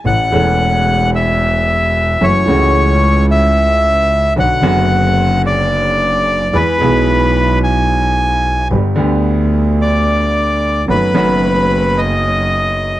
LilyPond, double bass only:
\new Staff \with { instrumentName = "Double bass" } { \clef bass \time 4/4 \key a \major \tempo 4 = 111 a,,8 e,,2.~ e,,8 | fis,,8 cis,2.~ cis,8 | b,,8 fis,,2.~ fis,,8 | e,8 b,,2.~ b,,8 |
g,,8 d,2.~ d,8 | fis,,8 fis,,2.~ fis,,8 | }